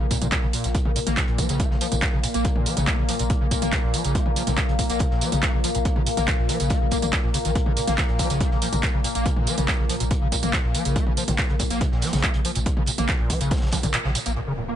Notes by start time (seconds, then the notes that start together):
Already playing: A#2 A#3
0.00 A#1 C#3
0.11 A#2, kick, closed hi-hat, open hi-hat, tambourine
0.22 A#1 A#2, closed hi-hat, mid tom, tambourine
0.32 A#2, kick, snare, clap, closed hi-hat, tambourine
0.43 A#1 C#3
0.53 A#2, closed hi-hat, open hi-hat, tambourine
0.64 A#1 A2, snare, closed hi-hat, tambourine
0.75 A#2 A#3, kick, closed hi-hat, tambourine
0.85 A#1 C#3, mid tom
0.96 A#2, closed hi-hat, open hi-hat, tambourine
1.07 A#1 A#3, snare, closed hi-hat, mid tom, tambourine
1.17 A#2, kick, snare, clap, closed hi-hat, tambourine
1.28 A#1 A#2, closed hi-hat
1.38 F3, kick, closed hi-hat, open hi-hat, tambourine
1.49 A#1 C#3, snare, closed hi-hat, tambourine
1.60 A#3, kick, closed hi-hat, tambourine
1.70 A#1 C#3, snare
1.81 F3, closed hi-hat, open hi-hat, tambourine
1.92 A#1 A#2, closed hi-hat, mid tom, tambourine
2.02 A#2, kick, snare, clap, closed hi-hat, tambourine
2.13 A#1 C#3
2.23 A#2, closed hi-hat, open hi-hat, tambourine
2.34 A#1 A#3, closed hi-hat, tambourine
2.45 A#2, kick, closed hi-hat, tambourine
2.56 A#1 A#2, mid tom
2.66 F3, closed hi-hat, open hi-hat, tambourine
2.76 A#1 C#3, snare, closed hi-hat, mid tom, tambourine
2.87 A#3, kick, snare, clap, closed hi-hat, tambourine
2.98 A#1 C#3
3.09 F3, closed hi-hat, open hi-hat, tambourine
3.19 A#1 A#2, closed hi-hat, tambourine
3.30 A#2, kick, closed hi-hat, tambourine
3.41 A#1 C#3
3.51 A#2, kick, closed hi-hat, open hi-hat, tambourine
3.62 A#1 A#3, closed hi-hat, mid tom, tambourine
3.72 A#2, kick, snare, clap, closed hi-hat, tambourine
3.83 A#1 A#2
3.94 F3, closed hi-hat, open hi-hat, tambourine
4.04 A#1 C#3, snare, closed hi-hat, tambourine
4.15 A#3, kick, closed hi-hat, tambourine
4.26 A#1 C#3, mid tom
4.36 F3, closed hi-hat, open hi-hat, tambourine
4.47 A#1 A#2, snare, closed hi-hat, mid tom, tambourine
4.57 A#2, kick, snare, clap, closed hi-hat, tambourine
4.68 A#1 C#3, closed hi-hat
4.79 A#2, kick, closed hi-hat, open hi-hat, tambourine
4.90 A#1 A#3, snare, closed hi-hat, tambourine
4.99 A#2, kick, closed hi-hat, tambourine
5.11 A#1 A#2, snare
5.21 F3, closed hi-hat, open hi-hat, tambourine
5.32 A#1 C#3, closed hi-hat, mid tom, tambourine
5.42 A#3, kick, snare, clap, closed hi-hat
5.54 A#1 C#3
5.64 F3, closed hi-hat, open hi-hat, tambourine
5.75 A#1 A#2, closed hi-hat, tambourine
5.85 A#2, kick, closed hi-hat, tambourine
5.96 A#1 C#3, mid tom
6.07 A#2, closed hi-hat, open hi-hat, tambourine
6.17 A#1 A#3, snare, closed hi-hat, mid tom, tambourine
6.28 A#2, kick, snare, clap, closed hi-hat, tambourine
6.39 A#1 A#2
6.49 F3, closed hi-hat, open hi-hat, tambourine
6.60 A#1 C#3, closed hi-hat, tambourine
6.70 A#3, kick, closed hi-hat, tambourine
6.81 A#1 C#3
6.91 A#3, kick, closed hi-hat, open hi-hat, tambourine
7.02 A#1 A#3, closed hi-hat, mid tom, tambourine
7.13 A#2, kick, snare, clap, closed hi-hat
7.24 A#1 A#2
7.34 C#3, closed hi-hat, open hi-hat, tambourine
7.44 A#1 D#3, snare, closed hi-hat, tambourine
7.55 A#2, kick, closed hi-hat, tambourine
7.66 A#1 C#3, mid tom
7.77 A#2, closed hi-hat, open hi-hat, tambourine
7.87 A#1 A#3, snare, closed hi-hat, mid tom, tambourine
7.98 A#2, kick, snare, clap, closed hi-hat, tambourine
8.09 A#1 A#2, closed hi-hat
8.19 F3, kick, closed hi-hat, open hi-hat, tambourine
8.29 A#1 C#3, snare, closed hi-hat, tambourine
8.41 A#3, kick, closed hi-hat, tambourine
8.51 A#1 C#3, snare
8.62 F3, closed hi-hat, open hi-hat, tambourine
8.73 A#1 A#2, closed hi-hat, mid tom, tambourine
8.82 A#2, kick, snare, clap, closed hi-hat, tambourine
8.94 A#1 C#3
9.04 A#2, closed hi-hat, open hi-hat, tambourine
9.15 A#1 A#3, closed hi-hat, tambourine
9.26 A#2, kick, closed hi-hat, tambourine
9.36 A#1 A#2, mid tom
9.47 F3, closed hi-hat, open hi-hat, tambourine
9.58 A#1 C#3, snare, closed hi-hat, mid tom, tambourine
9.68 A#3, kick, snare, clap, closed hi-hat, tambourine
9.79 A#1 C#3
9.89 F3, closed hi-hat, open hi-hat, tambourine
10.00 A#1 A#2, closed hi-hat, tambourine
10.11 A#2, kick, closed hi-hat, tambourine
10.21 A#1 C#3
10.32 A#2, kick, closed hi-hat, open hi-hat, tambourine
10.43 A#1 A#3, closed hi-hat, mid tom, tambourine
10.53 A#2, kick, snare, clap, closed hi-hat, tambourine
10.64 A#1 A#2
10.74 F3, closed hi-hat, open hi-hat, tambourine
10.85 A#1 C#3, snare, closed hi-hat, tambourine
10.96 A#3, kick, closed hi-hat, tambourine
11.07 A#1 C#3, mid tom
11.17 F3, closed hi-hat, open hi-hat, tambourine
11.28 A#1 A#2, snare, closed hi-hat, mid tom, tambourine
11.38 A#2, kick, snare, clap, closed hi-hat, tambourine
11.49 A#1 C#3, closed hi-hat
11.59 A#2, kick, closed hi-hat, open hi-hat, tambourine
11.70 A#1 A#3, snare, closed hi-hat, tambourine
11.81 A#2, kick, closed hi-hat, tambourine
11.92 A#1 A#2, snare
12.02 F3, snare, closed hi-hat, open hi-hat, tambourine
12.07 snare, closed hi-hat
12.13 A#1 C#3, snare, closed hi-hat, mid tom, tambourine
12.18 snare, closed hi-hat
12.23 A#3, kick, clap, closed hi-hat, tambourine
12.34 A#1 C#3, closed hi-hat
12.45 F3, open hi-hat, tambourine
12.55 A#1 A#2, closed hi-hat, tambourine
12.66 A#2, kick, closed hi-hat, tambourine
12.77 A#1 C#3, mid tom
12.86 A#2, closed hi-hat, open hi-hat, tambourine
12.98 A#1 A#3, snare, closed hi-hat, mid tom, tambourine
13.08 A#2, kick, snare, clap, closed hi-hat, tambourine
13.19 A#1 A#2
13.30 F3, kick, closed hi-hat, open hi-hat, tambourine
13.41 A#1 C#3, closed hi-hat, tambourine
13.51 A#3, kick, snare, closed hi-hat, tambourine
13.57 snare, closed hi-hat
13.62 A#1 C#3, snare, closed hi-hat
13.67 snare, closed hi-hat
13.71 F3, kick, snare, closed hi-hat, open hi-hat, tambourine
13.83 A#1 A#2, closed hi-hat, mid tom, tambourine
13.94 A#2, clap, closed hi-hat, tambourine
14.04 A#1 C#3, snare
14.15 A#2, closed hi-hat, open hi-hat, tambourine
14.25 A#1 A#3, snare, closed hi-hat, tambourine
14.36 A#2, impact
14.47 C#3
14.58 A#2
14.68 A#3